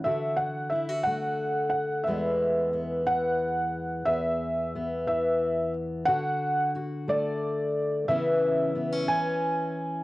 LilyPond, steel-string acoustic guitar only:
\new Staff \with { instrumentName = "Steel-string acoustic guitar" } { \time 6/8 \key e \mixolydian \tempo 4. = 60 << { fis'4 e'16 fis'4.~ fis'16 | <e gis b gis'>4 b2 | gis'4 b2 | fis'4 fis'2 |
<e b cis' e'>4 b16 cis'4.~ cis'16 | } \\ { d4. a4. | e,4. e4. | e,4. e4. | d4. a4. |
cis4. e4. | } >> }